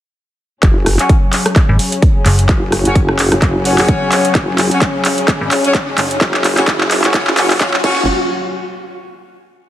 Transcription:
0.63 F#1 C#3 F#3 C#4, kick, clap, closed hi-hat, riser
0.86 cross-stick, open hi-hat
0.99 C#4 F#4 C#5, clap, closed hi-hat
1.09 kick, closed hi-hat
1.33 clap, open hi-hat
1.46 cross-stick, closed hi-hat
1.56 kick, clap, closed hi-hat
1.69 G#1
1.79 open hi-hat
1.92 closed hi-hat
2.02 kick, closed hi-hat
2.26 F#1, clap, open hi-hat
2.39 closed hi-hat
2.49 F#1, kick, clap, closed hi-hat
2.72 cross-stick, open hi-hat
2.85 F#1 C#4 F#4 C#5, closed hi-hat
2.95 kick, closed hi-hat
3.09 cross-stick
3.19 clap, open hi-hat
3.32 F#1, cross-stick, closed hi-hat
3.42 kick, clap, closed hi-hat
3.65 C#4 F#4 C#5, open hi-hat
3.78 F#1, clap, open hi-hat
3.88 kick, closed hi-hat
4.12 clap, open hi-hat
4.25 closed hi-hat
4.35 F#1, kick, clap, closed hi-hat
4.58 clap, open hi-hat
4.71 C#4 F#4 C#5, closed hi-hat
4.82 kick, clap, closed hi-hat
5.05 clap, open hi-hat
5.18 closed hi-hat
5.28 kick, clap, closed hi-hat
5.41 G#1
5.51 clap, open hi-hat
5.64 C#4 F#4 C#5, closed hi-hat
5.75 kick, clap, closed hi-hat
5.98 F#1, clap, open hi-hat
6.11 closed hi-hat
6.21 F#1, kick, clap, closed hi-hat
6.34 clap
6.44 clap, open hi-hat
6.57 F#1 C#4 F#4 C#5, clap, closed hi-hat
6.68 kick, clap, closed hi-hat
6.81 clap
6.91 clap, open hi-hat
7.04 F#1 C#4 F#4 C#5, clap, closed hi-hat
7.14 C#4 F#4 C#5, kick, clap, closed hi-hat
7.27 F#1, clap
7.37 C#4 F#4 C#5, clap, open hi-hat
7.50 clap, open hi-hat
7.61 C#4 F#4 C#5, kick, clap
7.74 clap
7.84 F#1 F#3 C#4 F#4 C#5, kick, crash

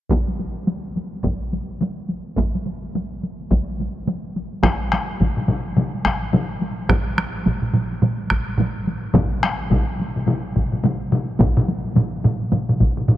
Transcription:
0.11 taiko, taiko high
0.28 taiko high
0.39 taiko high
0.56 taiko high
0.68 taiko high
0.84 taiko high
0.96 taiko high
1.13 taiko high
1.24 taiko, taiko high
1.41 taiko high
1.53 taiko high
1.70 taiko high
1.81 taiko high
1.99 taiko high
2.09 taiko high
2.37 taiko, taiko high
2.55 taiko high
2.67 taiko high
2.84 taiko high
2.95 taiko high
3.12 taiko high
3.23 taiko high
3.41 taiko high
3.51 taiko, taiko high
3.69 taiko high
3.80 taiko high
3.97 taiko high
4.08 taiko high
4.24 taiko high
4.37 taiko high
4.54 taiko high
4.63 taiko rim, taiko, taiko high
4.82 taiko high
4.92 taiko rim, taiko high
5.11 taiko high
5.20 taiko, taiko low-mid, taiko high
5.37 taiko low-mid
5.48 taiko low-mid, taiko high
5.66 taiko high
5.77 taiko low-mid, taiko high
5.94 taiko high
6.05 taiko rim, taiko, taiko high
6.22 taiko high
6.33 taiko low-mid, taiko high
6.61 taiko high
6.78 taiko high
6.89 taiko rim, taiko, taiko high
7.06 taiko high
7.18 taiko rim, taiko high
7.35 taiko high
7.46 taiko, taiko mid, taiko high
7.62 taiko mid, taiko high
7.74 taiko mid, taiko high
7.92 taiko high
8.02 taiko mid, taiko high
8.20 taiko high
8.30 taiko rim, taiko, taiko high
8.48 taiko high
8.58 taiko mid, taiko high
8.87 taiko high
9.04 taiko high
9.14 taiko, taiko low-mid, taiko high
9.33 taiko high
9.43 taiko rim, taiko high
9.60 taiko high
9.71 taiko, taiko low-mid, taiko high
9.88 taiko high
10.00 taiko high
10.16 taiko low-mid, taiko high
10.27 taiko low-mid, taiko high
10.44 taiko high
10.56 taiko, taiko low-mid, taiko high
10.72 taiko low-mid, taiko high
10.84 taiko low-mid, taiko high
11.12 taiko low-mid, taiko high
11.29 taiko high
11.40 taiko, taiko low-mid, taiko mid, taiko high
11.57 taiko low-mid, taiko mid, taiko high
11.68 taiko high
11.85 taiko high
11.96 taiko low-mid, taiko mid, taiko high
12.13 taiko high
12.24 taiko low-mid, taiko mid, taiko high
12.41 taiko high
12.52 taiko low-mid, taiko mid, taiko high
12.69 taiko low-mid, taiko mid, taiko high
12.80 taiko, taiko low-mid, taiko mid, taiko high
12.97 taiko low-mid, taiko mid, taiko high
13.08 taiko low-mid, taiko mid

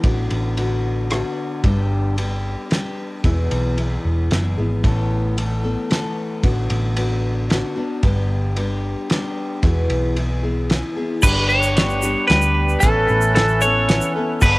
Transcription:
0.03 A1 A2 D3 B3 D4 F#4, kick, ride
0.31 A1, ride
0.57 D3 B3 D4 F#4, ride
1.10 D3 B3 D4 F#4, cross-stick, ride
1.64 G1 G2 D3 G3 B3 D4 G4, kick, ride
2.16 G3 B3 D4 G4, ride
2.70 G3 B3 D4 G4, snare, ride
3.24 E1 E2 B2 E3 B3 E4 G#4, kick, ride
3.51 B1, ride
3.77 E3 B3 E4 G#4, ride
4.05 E1
4.30 F#1 E3 B3 E4 G#4, snare, ride
4.58 G#1 E3 B3 E4 G#4
4.83 A1 A2 E3 A3 B3 A4, kick, ride
5.37 E3 A3 B3 A4, ride
5.64 A3 B3 A4
5.90 E3 A3 B3 A4, snare, ride
6.43 A1 A2 D3 B3 D4 F#4, kick, ride
6.70 A1, ride
6.96 D3 B3 D4 F#4, ride
7.49 D3 B3 D4 F#4, snare, ride
7.76 B3 D4 F#4
8.03 G1 G2 D3 G3 B3 D4 G4, kick, ride
8.56 G3 B3 D4 G4, ride
9.10 G3 B3 D4 G4, snare, ride
9.62 E1 E2 B2 E3 B3 E4 G#4, kick, ride
9.90 B1, ride
10.16 E3 B3 E4 G#4, ride
10.43 E3 B3 E4 G#4
10.70 E3 B3 E4 G#4, snare, ride
10.96 E3 B3 E4 G#4
11.22 G1 G2 D3 G3 B3 D4 G4 B4, kick, crash, shaker
11.49 C#5, shaker
11.63 shaker
11.77 G3 B3 D4 G4, snare, closed hi-hat
11.90 shaker
12.02 G3 B3 D4 G4, shaker
12.28 D2 G3 B3 D4 B4, snare, closed hi-hat
12.32 G4
12.42 shaker
12.69 shaker
12.80 A1 A2 E3 B3 C#4 E4 A4 B4, kick, closed hi-hat, shaker
12.84 A4
13.08 A1, shaker
13.21 shaker
13.35 E3 B3 C#4 A4, snare, closed hi-hat
13.48 shaker
13.61 B3 C#4 A4 C#5, shaker
13.89 E3 B3 C#4 A4, snare, closed hi-hat
14.01 shaker
14.16 B3 C#4 A4
14.41 G1 G2 D3 G3 B3 D4 G4 B4, kick, crash, shaker

